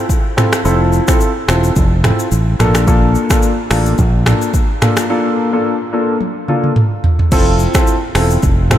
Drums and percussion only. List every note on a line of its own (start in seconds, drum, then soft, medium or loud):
0.09 kick medium
0.09 shaker medium
0.38 finger snap medium
0.38 cross-stick medium
0.38 mid tom medium
0.38 shaker medium
0.53 finger snap medium
0.53 cross-stick medium
0.53 shaker medium
0.65 shaker medium
0.93 shaker medium
1.08 finger snap medium
1.08 kick loud
1.08 cross-stick medium
1.08 shaker medium
1.20 shaker medium
1.48 finger snap medium
1.48 cross-stick loud
1.48 shaker medium
1.64 shaker medium
1.76 kick medium
1.76 shaker medium
2.04 finger snap medium
2.04 cross-stick loud
2.04 mid tom medium
2.04 shaker medium
2.19 shaker medium
2.32 shaker medium
2.60 finger snap medium
2.60 cross-stick medium
2.60 mid tom medium
2.60 shaker medium
2.75 finger snap medium
2.75 cross-stick loud
2.75 shaker medium
2.87 kick loud
2.87 shaker medium
3.15 shaker soft
3.30 finger snap medium
3.30 kick medium
3.30 cross-stick medium
3.30 shaker medium
3.43 shaker medium
3.71 finger snap medium
3.71 cross-stick loud
3.71 open hi-hat medium
3.71 shaker medium
3.86 shaker medium
3.98 kick medium
3.98 shaker medium
4.26 finger snap medium
4.26 cross-stick loud
4.26 mid tom medium
4.26 shaker soft
4.42 shaker medium
4.54 kick medium
4.54 shaker medium
4.82 finger snap medium
4.82 cross-stick medium
4.82 mid tom medium
4.82 shaker medium
4.97 finger snap medium
4.97 cross-stick loud
4.97 shaker medium
6.21 high tom medium
6.48 mid tom medium
6.64 mid tom medium
6.76 mid tom medium
7.04 floor tom loud
7.19 floor tom loud
7.32 kick loud
7.32 crash loud
7.32 shaker medium
7.59 shaker medium
7.74 finger snap medium
7.74 kick loud
7.74 cross-stick medium
7.74 shaker medium
7.87 shaker medium
8.15 finger snap medium
8.15 cross-stick loud
8.15 open hi-hat medium
8.15 shaker medium
8.30 shaker medium
8.43 kick medium
8.43 shaker medium
8.71 finger snap medium
8.71 cross-stick loud
8.71 mid tom medium
8.71 shaker medium